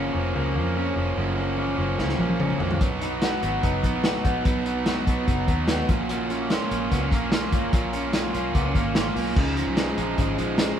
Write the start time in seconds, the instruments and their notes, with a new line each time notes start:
Already playing: fingered electric bass F#1, overdriven electric guitar C#3 F3 A#3 C#4, clean electric guitar A#3
0.13 fingered electric bass F1, overdriven electric guitar F3 A#3 C#4
0.34 fingered electric bass C#2, overdriven electric guitar F#2 C#3 F3 A#3 C#4
0.55 fingered electric bass F2, overdriven electric guitar F3 A#3 C#4
0.75 overdriven electric guitar C#3 F3 A#3 C#4
0.95 fingered electric bass F1, overdriven electric guitar F3 A#3 C#4
1.16 fingered electric bass F#1, overdriven electric guitar F#2 C#3 F3 A#3 C#4
1.37 overdriven electric guitar F3 A#3 C#4
1.57 overdriven electric guitar C#3 F3 A#3 C#4
1.78 fingered electric bass F#1, overdriven electric guitar F3 A#3 C#4
1.98 fingered electric bass C#2, overdriven electric guitar F#2 C#3 F3 A#3 C#4, snare
2.09 snare
2.19 fingered electric bass A#1, overdriven electric guitar F3 A#3 C#4, high tom
2.29 high tom
2.40 overdriven electric guitar C#3 F3 A#3 C#4, mid tom
2.50 mid tom
2.60 fingered electric bass A#1, overdriven electric guitar F3 A#3 C#4, floor tom
2.71 floor tom
2.81 fingered electric bass B1, overdriven electric guitar B2 F#3 B3 D#4, kick, closed hi-hat
3.01 overdriven electric guitar F#3 B3 D#4, closed hi-hat
3.21 overdriven electric guitar B2 F#3 B3 D#4, clean electric guitar F#4, snare, closed hi-hat
3.42 fingered electric bass G#1, overdriven electric guitar F#3 B3 D#4, closed hi-hat
3.62 fingered electric bass F#1, overdriven electric guitar B2 F#3 B3 D#4, kick, closed hi-hat
3.82 fingered electric bass A#1, overdriven electric guitar F#3 B3 D#4, kick, closed hi-hat
4.03 overdriven electric guitar B2 F#3 B3 D#4, clean electric guitar F#4, snare, closed hi-hat
4.23 fingered electric bass A#1, overdriven electric guitar F#3 B3 D#4, kick, closed hi-hat
4.44 fingered electric bass B1, overdriven electric guitar B2 F#3 B3 D#4, kick, closed hi-hat
4.65 overdriven electric guitar F#3 B3 D#4, closed hi-hat
4.85 overdriven electric guitar B2 F#3 B3 D#4, clean electric guitar F#4, snare, closed hi-hat
5.06 fingered electric bass B1, overdriven electric guitar F#3 B3 D#4, kick, closed hi-hat
5.27 fingered electric bass F#1, overdriven electric guitar B2 F#3 B3 D#4, kick, closed hi-hat
5.48 fingered electric bass D#2, overdriven electric guitar F#3 B3 D#4, kick, closed hi-hat
5.68 overdriven electric guitar B2 F#3 B3 D#4, clean electric guitar F#4, snare, closed hi-hat
5.89 fingered electric bass A#1, clean electric guitar A#2, overdriven electric guitar A#3 C#4 F4, kick, closed hi-hat
6.09 overdriven electric guitar A#2 F#3 A#3 C#4 F4, closed hi-hat
6.29 overdriven electric guitar A#3 C#4 F4, closed hi-hat
6.50 overdriven electric guitar F#3 A#3 C#4 F4, snare, closed hi-hat
6.71 fingered electric bass A#1, overdriven electric guitar A#3 C#4 F4, closed hi-hat
6.91 fingered electric bass C#2, overdriven electric guitar A#2 F#3 A#3 C#4 F4, clean electric guitar B3, kick, closed hi-hat
7.01 clean electric guitar C#4
7.11 fingered electric bass A#1, overdriven electric guitar A#3 C#4 F4, kick, closed hi-hat
7.32 overdriven electric guitar F#3 A#3 C#4 F4, snare, closed hi-hat
7.52 fingered electric bass G#1, overdriven electric guitar A#3 C#4 F4, kick, closed hi-hat
7.72 fingered electric bass A#1, overdriven electric guitar A#2 F#3 A#3 C#4 F4, kick, closed hi-hat
7.93 overdriven electric guitar A#3 C#4 F4, closed hi-hat
8.13 overdriven electric guitar F#3 A#3 C#4 F4, snare, closed hi-hat
8.34 fingered electric bass B1, overdriven electric guitar A#3 C#4 F4, closed hi-hat
8.54 fingered electric bass C#2, overdriven electric guitar A#2 F#3 A#3 C#4 F4, clean electric guitar B3, kick, closed hi-hat
8.65 clean electric guitar C#4
8.74 fingered electric bass G#1, overdriven electric guitar A#3 C#4 F4, kick, closed hi-hat
8.94 overdriven electric guitar F#3 A#3 C#4 F4, snare, closed hi-hat
9.15 fingered electric bass B1, overdriven electric guitar A#3 C#4 F4, open hi-hat
9.36 fingered electric bass C#2, overdriven electric guitar C#3 F3 G#3 D#4, kick, crash
9.56 overdriven electric guitar F3 G#3 D#4, closed hi-hat
9.67 fingered electric bass B1
9.77 overdriven electric guitar C#3 F3 G#3 D#4, snare, closed hi-hat
9.97 fingered electric bass A#1, overdriven electric guitar F3 G#3 D#4, closed hi-hat
10.17 fingered electric bass G#1, overdriven electric guitar C#3 F3 G#3 D#4, kick, closed hi-hat
10.38 fingered electric bass A#1, overdriven electric guitar F3 G#3 D#4, closed hi-hat
10.58 overdriven electric guitar C#3 F3 G#3 D#4, snare, closed hi-hat